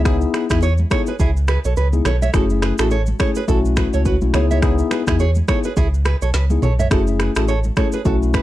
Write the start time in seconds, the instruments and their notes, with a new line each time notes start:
Already playing: sub bass C#2
0.05 tine electric piano B3 D#4 E4 G#4, nylon-string guitar E4 G#4, finger snap, kick, cross-stick, shaker
0.21 shaker
0.34 nylon-string guitar G#4 B4, finger snap, cross-stick, shaker
0.50 sub bass E2, tine electric piano B3 D#4 E4 G#4, nylon-string guitar E4 G#4, finger snap, kick, cross-stick, shaker
0.62 nylon-string guitar G#4 C#5, shaker
0.78 high conga, shaker
0.91 tine electric piano B3 D#4 E4 G#4, nylon-string guitar A4 C#5, finger snap, kick, cross-stick, high conga, shaker
1.07 nylon-string guitar G#4 B4, shaker
1.19 sub bass C#2, nylon-string guitar E4 G#4, kick, low conga, shaker
1.37 shaker
1.48 nylon-string guitar G#4 B4, finger snap, cross-stick, shaker
1.65 sub bass B1, nylon-string guitar A4 C#5, shaker
1.77 sub bass C#2, nylon-string guitar G#4 B4, shaker
1.93 tine electric piano B3 D#4 E4 G#4, high conga, shaker
2.05 sub bass B1, nylon-string guitar A4 C#5, finger snap, cross-stick, low conga, shaker
2.22 nylon-string guitar C#5 E5, high conga, shaker
2.34 sub bass F#1, tine electric piano A3 C#4 E4 G#4, nylon-string guitar F#4 A4, finger snap, kick, cross-stick, shaker
2.50 shaker
2.62 nylon-string guitar G#4 B4, finger snap, cross-stick, shaker
2.78 sub bass A1, tine electric piano A3 C#4 E4 G#4, nylon-string guitar F#4 A4, finger snap, cross-stick, shaker
2.91 nylon-string guitar A4 C#5, shaker
3.06 high conga, shaker
3.19 tine electric piano A3 C#4 E4 G#4, nylon-string guitar A4 C#5, finger snap, kick, cross-stick, high conga, shaker
3.35 nylon-string guitar G#4 B4, shaker
3.48 sub bass B1, tine electric piano A3 C#4 E4 F#4, nylon-string guitar F#4 A4, kick, low conga, shaker
3.65 shaker
3.76 nylon-string guitar G#4 B4, finger snap, kick, cross-stick, shaker
3.93 sub bass C#2, nylon-string guitar A4 C#5, shaker
4.05 nylon-string guitar F#4 B4, kick, shaker
4.21 sub bass B1, tine electric piano A3 C#4 E4 F#4, high conga, shaker
4.33 sub bass C#2, tine electric piano B3 D#4 E4 G#4, nylon-string guitar G#4 C#5, finger snap, cross-stick, low conga, shaker
4.51 nylon-string guitar C#5 E5, high conga, shaker
4.62 tine electric piano B3 D#4 E4 G#4, nylon-string guitar E4 G#4, finger snap, kick, cross-stick, shaker
4.78 shaker
4.91 nylon-string guitar G#4 B4, finger snap, cross-stick, high conga, shaker
5.07 sub bass E2, tine electric piano B3 D#4 E4 G#4, nylon-string guitar E4 G#4, finger snap, kick, cross-stick, shaker
5.19 nylon-string guitar G#4 C#5, shaker
5.35 high conga, shaker
5.48 tine electric piano B3 D#4 E4 G#4, nylon-string guitar A4 C#5, finger snap, kick, cross-stick, high conga, shaker
5.64 nylon-string guitar G#4 B4, shaker
5.77 sub bass C#2, nylon-string guitar E4 G#4, kick, low conga, shaker
5.94 shaker
6.05 nylon-string guitar G#4 B4, finger snap, cross-stick, shaker
6.22 sub bass B1, nylon-string guitar A4 C#5, shaker
6.34 sub bass C#2, nylon-string guitar G#4 B4, snare, shaker
6.50 tine electric piano B3 D#4 E4 G#4, high conga, shaker
6.62 sub bass B1, nylon-string guitar A4 C#5, mid tom, low conga, shaker
6.79 nylon-string guitar C#5 E5, floor tom, high conga, shaker
6.91 sub bass F#1, tine electric piano A3 C#4 E4 G#4, nylon-string guitar F#4 A4, finger snap, kick, cross-stick, shaker
7.07 shaker
7.20 nylon-string guitar G#4 B4, finger snap, cross-stick, shaker
7.36 sub bass A1, tine electric piano A3 C#4 E4 G#4, nylon-string guitar F#4 A4, finger snap, cross-stick, shaker
7.48 nylon-string guitar A4 C#5, shaker
7.63 high conga, shaker
7.76 tine electric piano A3 C#4 E4 G#4, nylon-string guitar A4 C#5, finger snap, kick, cross-stick, high conga, shaker
7.92 nylon-string guitar G#4 B4, shaker
8.05 sub bass B1, tine electric piano A3 C#4 E4 F#4, nylon-string guitar F#4 A4, kick, low conga, shaker
8.22 shaker
8.34 nylon-string guitar G#4 B4, finger snap, kick, cross-stick, shaker